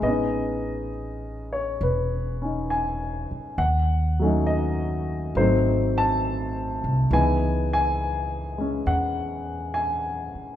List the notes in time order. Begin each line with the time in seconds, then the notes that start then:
0.00 A1 G#3 B3 D#5
0.06 C#4
0.10 D#4
1.53 C#5
1.81 E1 B4
2.42 C#4 D#4
2.70 G#5
3.31 muted upright bass stroke
3.58 D#2 F#5
4.19 F#3 A3 C#4
4.25 D#4
4.47 D#5
5.35 G#1 F#3 A3 C4 D#4 C5
5.98 A5
6.84 C2
7.11 C#2 E3 G#3 B3 D#4 G#5
7.73 G#5
8.58 G#3 C#4
8.86 E2 F#5
9.74 G#5
10.35 muted upright bass stroke